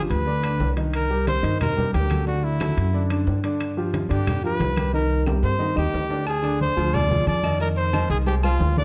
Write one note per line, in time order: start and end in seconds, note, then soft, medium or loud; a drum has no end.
0.00 0.21 F3 medium
0.00 0.21 F4 medium
0.00 0.21 G4 medium
0.10 0.57 D2 loud
0.10 0.74 B4 medium
0.10 high conga soft
0.10 high timbale medium
0.26 0.40 D3 medium
0.26 0.41 D4 medium
0.26 0.41 D5 medium
0.26 high conga soft
0.43 0.71 D3 medium
0.43 0.71 D4 medium
0.43 0.71 D5 medium
0.43 high conga soft
0.43 high timbale medium
0.43 claves medium
0.60 1.38 C2 medium
0.60 high conga soft
0.60 low timbale medium
0.77 1.04 D#3 medium
0.77 1.04 D#4 medium
0.77 1.05 D#5 medium
0.77 high conga soft
0.77 high timbale medium
0.93 1.26 A#4 medium
0.93 high conga soft
0.93 high timbale medium
0.93 claves medium
1.10 1.38 G3 medium
1.10 1.38 G4 medium
1.10 1.38 A#4 medium
1.10 high conga soft
1.27 1.59 C5 loud
1.27 high conga medium
1.27 high timbale medium
1.27 low timbale medium
1.43 1.90 G2 medium
1.43 1.71 D#3 medium
1.43 1.71 D#4 medium
1.43 1.71 D#5 medium
1.43 high timbale medium
1.61 1.92 A#4 loud
1.61 high conga soft
1.61 low conga medium
1.61 high timbale medium
1.61 claves medium
1.76 2.04 G3 medium
1.76 2.04 G4 medium
1.76 2.04 A#4 medium
1.76 high conga soft
1.76 low conga medium
1.94 2.72 D2 loud
1.94 2.25 G4 loud
1.94 high conga medium
1.94 high timbale medium
1.94 low timbale medium
2.10 2.24 F#3 medium
2.10 2.24 F#4 medium
2.10 2.24 A4 medium
2.10 high conga medium
2.10 high timbale medium
2.10 claves medium
2.27 2.54 D3 medium
2.27 2.54 D4 medium
2.27 2.46 F#4 medium
2.27 2.54 D5 medium
2.27 high conga soft
2.44 3.11 E4 medium
2.44 high conga soft
2.60 2.88 F#3 medium
2.60 2.88 F#4 medium
2.60 2.88 A4 medium
2.60 high conga medium
2.60 high timbale medium
2.60 low timbale medium
2.60 claves medium
2.77 3.24 F#2 loud
2.77 high conga soft
2.77 high timbale medium
2.93 3.07 D3 medium
2.93 3.07 D4 medium
2.93 3.08 D5 medium
2.93 high conga soft
3.10 3.38 D3 medium
3.10 3.38 D4 medium
3.10 3.38 D5 medium
3.10 high conga soft
3.10 high timbale medium
3.10 claves medium
3.27 4.05 G2 medium
3.27 high conga soft
3.27 low timbale medium
3.44 3.71 D3 medium
3.44 3.71 D4 medium
3.44 3.72 D5 medium
3.44 high conga soft
3.44 high timbale medium
3.60 high conga soft
3.60 high timbale medium
3.60 claves medium
3.77 4.04 F3 medium
3.77 4.05 F4 medium
3.77 4.05 G4 medium
3.77 high conga soft
3.94 high conga medium
3.94 high timbale medium
3.94 low timbale medium
4.09 4.57 G2 loud
4.09 4.37 D3 medium
4.09 4.37 D4 medium
4.09 4.42 G4 medium
4.09 4.38 D5 medium
4.09 high timbale medium
4.27 high conga soft
4.27 low conga medium
4.27 high timbale medium
4.27 claves medium
4.44 4.71 F3 medium
4.44 4.71 F4 medium
4.44 4.72 G4 medium
4.44 4.91 B4 loud
4.44 high conga soft
4.60 5.38 C2 loud
4.60 high conga medium
4.60 high timbale medium
4.60 low timbale medium
4.77 4.91 G3 medium
4.77 4.91 G4 medium
4.77 4.91 A#4 medium
4.77 high conga medium
4.77 high timbale medium
4.77 claves medium
4.93 5.21 D#3 medium
4.93 5.21 D#4 medium
4.93 5.25 A#4 medium
4.93 5.21 D#5 medium
4.93 high conga soft
5.11 high conga soft
5.26 5.54 G3 medium
5.26 5.54 G4 medium
5.26 5.54 A#4 medium
5.26 high conga medium
5.26 high timbale medium
5.26 claves medium
5.43 5.74 G2 loud
5.43 5.75 C5 loud
5.43 high conga soft
5.43 high timbale medium
5.59 5.73 D#3 medium
5.59 5.73 D#4 medium
5.59 5.73 D#5 medium
5.59 high conga soft
5.59 high timbale medium
5.76 5.92 D#2 medium
5.76 6.04 D#3 medium
5.76 6.04 D#4 medium
5.76 6.24 G4 loud
5.76 6.04 D#5 medium
5.76 high conga soft
5.76 claves medium
5.93 6.71 D2 medium
5.93 high conga soft
5.93 low timbale medium
6.09 6.24 D3 medium
6.09 6.24 D4 medium
6.09 6.24 D5 medium
6.09 high conga soft
6.09 low timbale medium
6.27 6.59 G#4 medium
6.27 high conga soft
6.27 low agogo loud
6.27 claves medium
6.43 6.70 D3 medium
6.43 6.70 D4 medium
6.43 6.71 D5 medium
6.43 high conga soft
6.43 low agogo medium
6.61 6.96 C5 loud
6.61 high conga medium
6.77 7.24 D2 loud
6.77 7.04 F3 medium
6.77 7.04 F4 medium
6.77 7.04 G#4 medium
6.77 low agogo medium
6.94 7.27 D5 loud
6.94 high conga soft
6.94 low conga medium
6.94 low agogo loud
6.94 claves medium
7.10 7.37 F3 medium
7.10 7.38 F4 medium
7.10 7.38 G#4 medium
7.10 high conga soft
7.10 low conga medium
7.27 8.04 F2 medium
7.27 7.59 D5 loud
7.27 high conga medium
7.27 low agogo medium
7.43 7.57 D#3 medium
7.43 7.57 D#4 medium
7.43 7.58 D#5 medium
7.43 high conga medium
7.43 low agogo loud
7.43 claves medium
7.60 7.87 D#3 medium
7.60 7.88 D#4 medium
7.60 7.68 A#4 loud
7.60 7.88 D#5 medium
7.60 high conga soft
7.60 low agogo medium
7.77 8.08 C5 loud
7.77 high conga soft
7.93 8.21 D#3 medium
7.93 8.21 D#4 medium
7.93 8.21 D#5 medium
7.93 high conga loud
7.93 low agogo loud
7.93 claves medium
8.10 8.56 C2 loud
8.10 8.18 G#4 loud
8.10 high conga soft
8.26 8.40 G#3 medium
8.26 8.35 G4 loud
8.26 8.40 G#4 medium
8.26 8.41 C5 medium
8.26 high conga soft
8.26 low agogo medium
8.43 8.71 G#3 medium
8.43 8.75 F4 loud
8.43 8.71 G#4 medium
8.43 8.71 C5 medium
8.43 high conga soft
8.43 low agogo loud
8.43 claves medium
8.60 8.84 D2 medium
8.60 high conga medium
8.60 low timbale medium
8.77 8.84 D3 medium
8.77 8.84 D4 medium
8.77 8.84 D5 medium
8.77 8.84 D5 loud
8.77 high conga medium